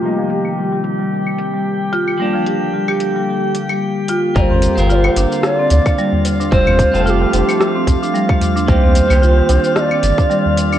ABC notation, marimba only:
X:1
M:4/4
L:1/16
Q:"Swing 16ths" 1/4=111
K:Gm
V:1 name="Marimba"
G, F, G z G, G z G,4 G,3 F2 | G, F, G z G, G z G,4 G,3 F2 | G, C z2 F2 D z2 C z D G, z2 D | G, C z2 F2 D z2 C z D G, z2 D |
G, C z2 F2 D z2 C z D G, z2 D |]